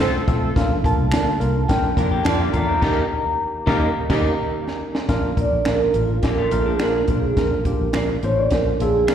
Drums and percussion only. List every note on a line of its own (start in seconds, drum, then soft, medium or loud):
0.00 snare loud
0.28 kick medium
0.28 snare soft
0.28 closed hi-hat medium
0.56 kick loud
0.56 snare loud
0.56 closed hi-hat medium
0.84 kick loud
0.84 closed hi-hat medium
1.12 finger snap medium
1.12 snare loud
1.12 closed hi-hat medium
1.41 closed hi-hat medium
1.69 kick medium
1.69 snare loud
1.69 closed hi-hat medium
1.97 kick loud
1.97 closed hi-hat medium
2.25 finger snap loud
2.25 snare loud
2.25 closed hi-hat medium
2.54 kick medium
2.54 closed hi-hat medium
2.82 kick loud
2.82 snare loud
2.82 crash medium
3.67 kick loud
3.67 snare loud
4.10 kick loud
4.10 snare loud
4.10 crash medium
4.67 snare medium
4.95 snare medium
5.09 kick medium
5.09 snare medium
5.09 closed hi-hat medium
5.37 kick medium
5.37 closed hi-hat medium
5.65 finger snap medium
5.65 snare loud
5.65 closed hi-hat medium
5.94 closed hi-hat medium
6.23 kick medium
6.23 snare loud
6.23 closed hi-hat medium
6.51 closed hi-hat medium
6.79 finger snap medium
6.79 snare loud
6.79 closed hi-hat medium
7.08 kick medium
7.08 closed hi-hat medium
7.37 kick loud
7.37 snare medium
7.37 closed hi-hat medium
7.65 kick medium
7.65 closed hi-hat medium
7.93 finger snap medium
7.93 snare loud
7.93 closed hi-hat medium
8.23 closed hi-hat medium
8.50 kick medium
8.50 snare loud
8.50 closed hi-hat medium
8.80 closed hi-hat medium
9.08 finger snap loud
9.08 snare loud
9.08 closed hi-hat medium